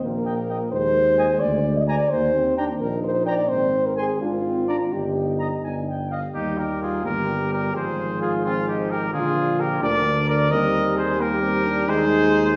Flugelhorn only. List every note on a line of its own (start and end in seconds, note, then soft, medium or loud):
0.25 0.34 G5 medium
0.49 0.57 G5 medium
1.18 1.26 G#5 medium
1.88 1.96 G#5 medium
2.57 2.65 G5 medium
3.26 3.34 G5 medium
3.97 4.05 G#5 medium
4.69 4.77 A#5 medium
5.39 5.48 A#5 medium
5.64 5.74 G#5 medium
5.88 6.10 G5 medium
6.11 6.22 F5 soft
6.34 6.60 D#4 medium
6.58 6.82 G4 medium
6.82 7.05 F4 medium
7.06 7.51 G4 medium
7.52 7.76 G4 medium
7.74 8.20 G#4 medium
8.21 8.43 F4 medium
8.45 8.55 C4 medium
8.68 8.90 D#4 medium
8.92 9.02 G4 medium
9.14 9.62 F4 medium
9.61 9.85 G4 medium
9.83 10.28 A#4 medium
10.28 10.50 A#4 medium
10.51 10.98 A#4 medium
10.97 11.19 G#4 medium
11.20 11.90 G4 medium
11.89 12.56 G#4 loud